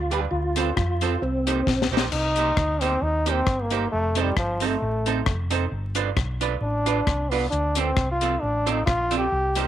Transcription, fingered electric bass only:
0.00 0.25 D2 medium
0.31 0.70 D2 loud
0.77 1.15 F2 medium
1.22 1.60 C2 medium
1.67 1.87 A#1 medium
1.91 2.09 A#1 medium
2.12 2.50 C2 loud
2.57 2.95 D2 medium
3.02 3.40 D#2 loud
3.47 3.85 G1 medium
3.92 4.30 F1 medium
4.36 4.75 G1 medium
4.82 5.20 A1 medium
5.26 5.65 F1 medium
5.71 6.10 G1 medium
6.17 6.55 B1 medium
6.61 7.00 A1 loud
7.07 7.45 C2 medium
7.52 7.90 D2 medium
7.97 8.35 C2 medium
8.43 8.81 A1 loud
8.87 9.26 A#1 medium
9.32 9.68 C2 loud

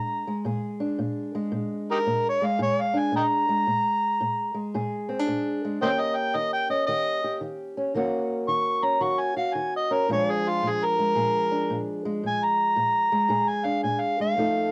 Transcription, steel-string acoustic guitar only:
0.00 0.42 A#2 medium
0.00 0.27 G#3 medium
0.00 0.30 D4 medium
0.27 1.34 G#3 medium
0.45 0.95 A#2 medium
0.45 1.55 G#4 medium
0.80 2.45 D4 medium
0.99 1.49 A#2 medium
1.35 2.41 G#3 medium
1.52 2.02 A#2 medium
2.06 2.56 A#2 medium
2.42 3.48 G#3 medium
2.59 3.09 A#2 medium
2.59 3.64 G#4 medium
2.94 3.64 D4 medium
3.12 3.63 A#2 medium
3.49 4.53 G#3 medium
3.67 4.17 A#2 medium
4.21 4.70 A#2 medium
4.54 5.62 G#3 medium
4.74 5.24 A#2 medium
4.74 5.79 G#4 medium
5.09 5.19 C4 medium
5.19 5.82 D4 soft
5.28 5.77 A#2 medium
5.65 5.82 G#3 medium
5.82 6.31 D#3 medium
5.82 7.95 A#3 medium
5.82 6.69 C#4 medium
5.82 6.88 G4 medium
6.35 6.84 D#3 medium
6.70 7.76 C#4 medium
6.88 7.38 D#3 medium
6.88 7.23 G4 medium
7.24 7.93 G4 medium
7.41 7.91 D#3 medium
7.77 7.93 C#4 medium
7.94 8.44 D#3 medium
7.94 10.10 A#3 medium
7.94 8.82 C#4 medium
7.94 9.00 F#4 medium
8.48 8.98 D#3 medium
8.83 9.89 C#4 medium
9.01 9.51 D#3 medium
9.01 9.35 F#4 medium
9.37 10.06 F#4 medium
9.55 10.05 D#3 medium
9.91 10.07 C#4 medium
10.09 10.59 A#2 medium
10.09 13.60 F3 medium
10.09 10.99 G#3 medium
10.09 11.50 D4 medium
10.09 11.16 G#4 medium
10.62 11.12 A#2 medium
10.99 12.04 G#3 medium
11.15 11.65 A#2 medium
11.15 12.21 G#4 medium
11.51 12.21 D4 medium
11.70 12.19 A#2 medium
12.05 13.11 G#3 medium
12.23 12.73 A#2 medium
12.76 13.26 A#2 medium
13.12 14.19 G#3 medium
13.29 13.79 A#2 medium
13.29 14.35 G#4 medium
13.65 14.34 D4 medium
13.84 14.33 A#2 medium
14.20 14.37 G#3 medium
14.36 14.72 F2 medium
14.36 14.72 F3 medium
14.36 14.72 A3 medium
14.36 14.72 D#4 medium
14.36 14.72 A4 medium

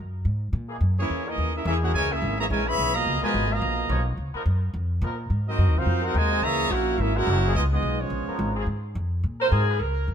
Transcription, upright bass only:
0.00 0.24 F#2 medium
0.25 0.52 G#2 medium
0.53 0.80 A#2 loud
0.81 1.08 F#2 medium
1.10 1.37 E2 medium
1.38 1.65 D#2 medium
1.65 1.93 E2 loud
1.93 2.21 C#2 medium
2.22 2.49 G#1 loud
2.50 2.77 A#1 medium
2.78 3.05 B1 loud
3.06 3.21 C#2 medium
3.23 muted upright bass stroke soft
3.34 3.61 G#1 loud
3.62 3.89 A#1 loud
3.89 4.17 B1 loud
4.17 4.33 C#2 medium
4.34 muted upright bass stroke soft
4.46 4.73 F#2 medium
4.74 5.01 F2 loud
5.02 5.29 A#2 loud
5.30 5.57 G#2 medium
5.58 5.68 F#2 loud
5.68 5.76 D#2 medium
5.76 5.85 C2 medium
5.86 6.13 F2 medium
6.15 6.42 D#2 loud
6.42 6.69 C#2 medium
6.70 6.97 A#1 loud
6.98 7.25 G#1 loud
7.27 7.54 F#1 loud
7.55 7.82 C#2 medium
7.83 8.10 B1 medium
8.10 8.26 A#1 loud
8.27 muted upright bass stroke soft
8.39 8.66 G#1 loud
8.66 8.94 G#2 medium
8.95 9.23 F2 loud
9.24 9.51 A#2 medium
9.52 9.79 G#2 loud
9.79 10.07 C#2 medium
10.08 10.14 F2 medium

